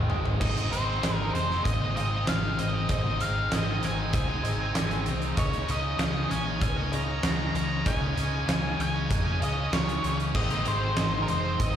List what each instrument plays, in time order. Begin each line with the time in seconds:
Already playing: tonewheel organ C4 D#4 G#4 D#5
0.09 fingered electric bass G#1, overdriven electric guitar G#2 D#3 G#3, floor tom
0.25 floor tom
0.40 fingered electric bass G#1, overdriven electric guitar G#2 D#3 G#3 C4 D#4, tonewheel organ C#4, honky-tonk piano D#4 G#4 C5 D#5, lead electric guitar D#5, kick, crash
0.45 tonewheel organ E4 A4 E5
0.56 overdriven electric guitar G#3 C4 D#4, closed hi-hat
0.64 tonewheel organ C4 D#4 G#4 D#5
0.71 fingered electric bass G#1, overdriven electric guitar D#3 G#3 C4 D#4, lead electric guitar C5, closed hi-hat
1.03 fingered electric bass G#1, overdriven electric guitar G#2 D#3 G#3 C4 D#4, honky-tonk piano D#4 G#4 C5 D#5, snare, closed hi-hat
1.17 lead electric guitar A#4
1.34 fingered electric bass F1, overdriven electric guitar D#3 G#3 C4 D#4, lead electric guitar C5, closed hi-hat
1.49 overdriven electric guitar G#3 C4 D#4, snare
1.64 fingered electric bass G#1, lead electric guitar D#5, kick, closed hi-hat
1.80 overdriven electric guitar G#3 C4 D#4
1.95 overdriven electric guitar D#3 G#3 C4 D#4, honky-tonk piano D#4 G#4 C5 F5, lead electric guitar D#5, closed hi-hat
2.11 overdriven electric guitar G#3 C4 D#4
2.27 fingered electric bass G#1, overdriven electric guitar G#2 D#3 G#3 C4 D#4, lead electric guitar F5, snare, closed hi-hat
2.58 fingered electric bass G#1, overdriven electric guitar D#3 G#3 C4 D#4, lead electric guitar D#5, closed hi-hat
2.73 overdriven electric guitar G#3 C4 D#4
2.89 fingered electric bass G#1, overdriven electric guitar G#2 D#3 G#3 C4 D#4, tonewheel organ C4, honky-tonk piano D#4 G#4 C5 D#5, lead electric guitar D#5, kick, closed hi-hat
3.03 overdriven electric guitar G#3 C4 D#4
3.19 fingered electric bass G#1, overdriven electric guitar D#3 G#3 C4 D#4, lead electric guitar F5, closed hi-hat
3.50 fingered electric bass G#1, overdriven electric guitar G#2 D#3 G#3 C4 D#4, honky-tonk piano D#4 G#4 C5 D#5, lead electric guitar D#5, snare, closed hi-hat
3.82 fingered electric bass G#1, overdriven electric guitar D#3 G#3 C4 D#4, lead electric guitar G#5, closed hi-hat
3.96 overdriven electric guitar G#3 C4 D#4
4.13 fingered electric bass C#2, lead electric guitar G#5, kick, closed hi-hat
4.27 overdriven electric guitar G#3 C4 D#4
4.42 fingered electric bass G#1, overdriven electric guitar D#3 G#3 C4 D#4, honky-tonk piano D#4 G#4 C5 D#5, closed hi-hat
4.58 overdriven electric guitar G#3 C4 D#4
4.73 fingered electric bass G#1, overdriven electric guitar G#2 D#3 G#3 C4 D#4, snare, closed hi-hat
4.91 closed hi-hat
5.05 fingered electric bass C2, overdriven electric guitar D#3 G#3 C4 D#4, closed hi-hat
5.20 overdriven electric guitar G#3 C4 D#4, closed hi-hat
5.35 fingered electric bass C#2, overdriven electric guitar C#3 G#3 C#4 D#4, tonewheel organ C#4 D#4 G#4 D#5, honky-tonk piano D#4 G#4 C#5 D#5, kick, closed hi-hat
5.39 lead electric guitar C#5
5.50 overdriven electric guitar G#3 C#4 D#4, closed hi-hat
5.66 fingered electric bass C#2, overdriven electric guitar C#3 G#3 C#4 D#4, closed hi-hat
5.71 lead electric guitar D#5
5.97 fingered electric bass C#2, overdriven electric guitar C#3 G#3 C#4 D#4, honky-tonk piano D#4 G#4 C#5 F5, snare, closed hi-hat
6.30 fingered electric bass A#1, overdriven electric guitar C#3 G#3 C#4 D#4, lead electric guitar G#5, closed hi-hat
6.46 overdriven electric guitar G#3 C#4 D#4
6.61 fingered electric bass C#2, lead electric guitar G#5, kick, closed hi-hat
6.76 overdriven electric guitar G#3 C#4 D#4
6.92 overdriven electric guitar C#3 G#3 C#4 D#4, honky-tonk piano D#4 G#4 C#5 D#5, lead electric guitar A#5, closed hi-hat
7.07 overdriven electric guitar G#3 C#4 D#4
7.22 fingered electric bass C#2, overdriven electric guitar C#3 G#3 C#4 D#4, snare, closed hi-hat
7.54 fingered electric bass C#2, overdriven electric guitar C#3 G#3 C#4 D#4, lead electric guitar A#5, closed hi-hat
7.69 overdriven electric guitar G#3 C#4 D#4
7.84 fingered electric bass C#2, overdriven electric guitar C#3 G#3 C#4 D#4, tonewheel organ C#4 G#4 D#5, honky-tonk piano D#4 G#4 C#5 D#5, lead electric guitar G#5, kick, closed hi-hat
7.88 tonewheel organ D#4
7.99 overdriven electric guitar G#3 C#4 D#4
8.14 fingered electric bass C#2, overdriven electric guitar C#3 G#3 C#4 D#4, closed hi-hat
8.47 fingered electric bass C#2, overdriven electric guitar C#3 G#3 C#4 D#4, honky-tonk piano D#4 G#4 C#5 F5, snare, closed hi-hat
8.77 fingered electric bass C#2, overdriven electric guitar C#3 G#3 C#4 D#4, lead electric guitar G#5, closed hi-hat
8.93 overdriven electric guitar G#3 C#4 D#4
9.11 fingered electric bass F2, kick, closed hi-hat
9.25 overdriven electric guitar G#3 C#4 D#4
9.40 fingered electric bass C#2, overdriven electric guitar C#3 G#3 C#4 D#4, honky-tonk piano D#4 G#4 C#5 F5, closed hi-hat
9.44 lead electric guitar D#5
9.55 overdriven electric guitar G#3 C#4 D#4
9.71 fingered electric bass C#2, overdriven electric guitar C#3 G#3 C#4 D#4, lead electric guitar C#5, snare, closed hi-hat
9.89 closed hi-hat
10.03 fingered electric bass C#2, overdriven electric guitar C#3 G#3 C#4 D#4, closed hi-hat
10.19 overdriven electric guitar G#3 C#4 D#4, closed hi-hat
10.33 fingered electric bass G#1, overdriven electric guitar G#2 D#3 G#3 C4 D#4, tonewheel organ C4 D#4 G#4 D#5, honky-tonk piano D#4 G#4 C5 D#5, lead electric guitar D#5, kick, crash
10.50 overdriven electric guitar G#3 C4 D#4, closed hi-hat
10.65 fingered electric bass G#1, overdriven electric guitar D#3 G#3 C4 D#4, lead electric guitar C5, closed hi-hat
10.96 fingered electric bass G#1, overdriven electric guitar G#2 D#3 G#3 C4 D#4, honky-tonk piano D#4 G#4 C5 D#5, snare, closed hi-hat
11.22 lead electric guitar A#4
11.26 fingered electric bass F1, overdriven electric guitar D#3 G#3 C4 D#4, lead electric guitar C5, closed hi-hat
11.43 overdriven electric guitar G#3 C4 D#4
11.60 fingered electric bass G#1, lead electric guitar D#5, kick, closed hi-hat
11.73 overdriven electric guitar D#4